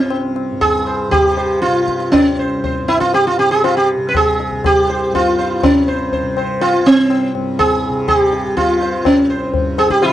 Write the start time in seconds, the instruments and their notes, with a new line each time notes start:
Already playing: tanpura C2 G2 C3, sitar C4
0.10 tabla na
0.36 tabla na
0.51 tanpura G2
0.61 sitar G#4, tabla na, tabla ge
0.87 sitar C5
1.09 tanpura C3, sitar G4, tabla na, tabla ge
1.37 sitar C5, tabla te
1.62 sitar F4, tabla te
1.68 tanpura C3
1.76 tabla te
1.88 tabla ke
2.00 tabla te
2.12 sitar C#4, tabla na, tabla ge
2.25 tanpura C2
2.39 sitar C5
2.64 sitar C5, tabla tin, tabla ge
2.82 tanpura G2
2.88 sitar E4, tabla na
3.00 sitar F4, tabla ke
3.14 sitar G4, tabla na
3.27 sitar F4
3.39 tanpura C3, sitar G4
3.51 sitar G#4
3.64 sitar F4, tabla na
3.77 sitar G4
3.97 tanpura C3
4.09 sitar B4
4.14 sitar G#4, tabla na, tabla ge
4.40 tabla te
4.52 tanpura C2, tabla ge
4.64 sitar G4, tabla na, tabla ge
4.89 sitar C5, tabla te
5.10 tanpura G2
5.15 sitar F4, tabla na, tabla ge
5.38 sitar C5, tabla te
5.63 tanpura C3, sitar C#4, tabla na, tabla ge
5.88 sitar C5
6.12 sitar C5, tabla tin, tabla ge
6.23 tanpura C3
6.37 sitar C5, tabla na
6.61 sitar F4, tabla na
6.79 tanpura C2
6.86 sitar C4
7.10 tabla na
7.34 tanpura G2, tabla na
7.59 sitar G#4, tabla na, tabla ge
7.89 tanpura C3
8.08 sitar G#4, tabla na, tabla ge
8.19 sitar G4
8.33 tabla te
8.44 tanpura C3
8.57 sitar F4, tabla na, tabla ge
8.82 sitar C5, tabla te
8.99 tanpura C2
9.05 sitar C#4, tabla na, tabla ge
9.30 sitar C5
9.54 tanpura G2, tabla tin, tabla ge
9.78 sitar G#4, tabla na
9.90 sitar G4, tabla ke
10.02 sitar E4 F4, tabla na
10.08 tanpura C3, sitar F4